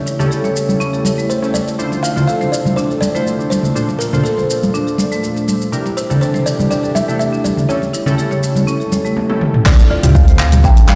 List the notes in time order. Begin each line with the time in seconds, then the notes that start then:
Already playing: C#3 G3 A3 E4 A4 C#5
0.06 E4, shaker
0.19 C#4 E4 G4 A4, muted conga, low conga, shaker
0.31 A4, shaker
0.44 C#5, muted conga, shaker
0.56 shaker
0.69 high conga, shaker
0.80 C#4, muted conga, shaker
0.93 A4, shaker
1.05 C#5, muted conga, high conga, shaker
1.18 A3, shaker
1.30 C5, muted conga, shaker
1.42 C#4 E4 G4 A4, shaker
1.54 D5, muted conga, high conga, shaker
1.68 shaker
1.78 C3 D3 F3 D4 E4 F4 A4 C5, shaker
1.92 muted conga, shaker
2.03 F4 F5, shaker
2.16 D3 E4 F4 A4 C5, muted conga, low conga, shaker
2.27 A4 F5, shaker
2.41 C5, muted conga, shaker
2.52 D5, shaker
2.65 high conga, low conga, shaker
2.76 D4 C5, muted conga, shaker
2.90 A4, shaker
3.01 D5, muted conga, high conga, shaker
3.15 D3 A3 E4 F4 A4 C5, shaker
3.26 muted conga, shaker
3.39 D4, shaker
3.50 C5, muted conga, high conga, shaker
3.63 low conga, shaker
3.75 A#2 D4 F4 A4 C5, shaker
3.89 muted conga, shaker
3.99 F4 A#4, shaker
4.13 A#2 D4 F4 A4 C5, muted conga, low conga, shaker
4.24 A4, shaker
4.38 C5, muted conga, shaker
4.50 shaker
4.63 high conga, shaker
4.74 D4, muted conga, shaker
4.87 A4, shaker
4.98 D5, muted conga, high conga, shaker
5.12 A3, shaker
5.23 muted conga, shaker
5.36 D4, shaker
5.48 muted conga, high conga, shaker
5.61 shaker
5.72 C3 E3 D4 E4 G4 A#4, shaker
5.86 muted conga, shaker
5.97 E4 C5, shaker
6.10 C3 D4 E4 G4 A4, muted conga, low conga, shaker
6.21 A4 C5, shaker
6.34 C5, muted conga, shaker
6.46 D5, shaker
6.59 high conga, low conga, shaker
6.71 D4 D5, muted conga, shaker
6.84 A4, shaker
6.95 D5 E5, muted conga, high conga, shaker
7.08 C3 A3 D4 E4 G4 A4, shaker
7.19 E5, muted conga, shaker
7.33 D4, shaker
7.44 D5, muted conga, high conga, shaker
7.57 low conga, shaker
7.69 C#3 G3 A3 C#4 E4 G4 A4 C#5, shaker
7.82 muted conga, shaker
7.93 E4, shaker
8.06 C#4 E4 G4 A4, muted conga, high conga, low conga, shaker
8.18 A4, shaker
8.31 C#5, muted conga, shaker
8.43 shaker
8.56 high conga, low conga, shaker
8.67 C#4, muted conga, shaker
8.80 A4, shaker
8.92 C#5, muted conga, high conga, shaker
9.05 A3, shaker
9.17 high tom
9.29 C#4 E4 G4 A4, high tom
9.41 mid tom
9.54 mid tom
9.65 D2 D3 F3 A3 C4 D4 E4 F4 A4 D5, kick, clap, crash, shaker
9.78 muted conga, shaker
9.90 F4 D5
10.03 D2 C4 E4 F4 G4, closed hi-hat, mid tom, muted conga, low conga, shaker
10.15 A4 F5, kick, shaker
10.27 C5, closed hi-hat, muted conga, shaker
10.39 D2 F5, clap
10.52 closed hi-hat, mid tom, high conga, low conga, shaker
10.64 A1 D4 G5, kick, muted conga, shaker
10.77 A4, closed hi-hat, shaker
10.88 D5 F5, clap, muted conga, high conga